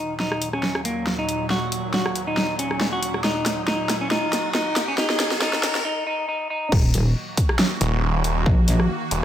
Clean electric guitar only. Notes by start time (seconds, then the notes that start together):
Already playing: D#4
0.20 D#4
0.53 C#4
0.85 A#3
1.19 D#4
1.50 F#4
1.94 F#4
2.27 D#4
2.59 C#4
2.93 F#4
3.24 D#4
3.68 D#4
4.01 C#4
4.11 D#4
4.55 D#4
4.88 C#4
4.98 D#4
5.42 D#4
5.85 D#4
6.07 D#4
6.29 D#4
6.50 D#4